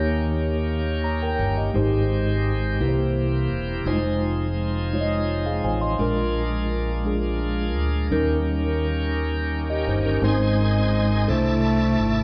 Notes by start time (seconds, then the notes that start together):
Already playing: D#2 D#3 A#3 C#4 D#4 G4 C#5
1.04 C#5 A#5
1.22 A#4 G5
1.39 G1
1.57 G4 D#5
1.74 G#1 G#2 G#3 C4 D#4 G4 C5
2.80 C2 C3 E3 A#3 E4 G4 B4
2.88 C5
3.51 E1
3.85 F1 F3 G3 C4 D#4 F4 G#4 C5
3.93 G#3
4.92 G#3 D#4 F4 C#5
5.01 D#5
5.46 G#4 F5
5.64 A1 C5 G#5
5.81 D#5 C6
5.99 A#1 A#2 G#3 A#3 D4 F4 A#4
7.05 G#3 D4 F4 G#4
7.76 D2
8.10 D#2 D#3 G3 C#4 D#4 G4 A#4
9.70 G4 D#5
9.87 G1 D#4 C5
10.06 C#4 A#4
10.22 G#1 G#2 G#3 C4 D#4 G#4 C5 G#5
11.28 C2 C3 A3 D4 E4 A4 C5 D5 A5
11.99 G#1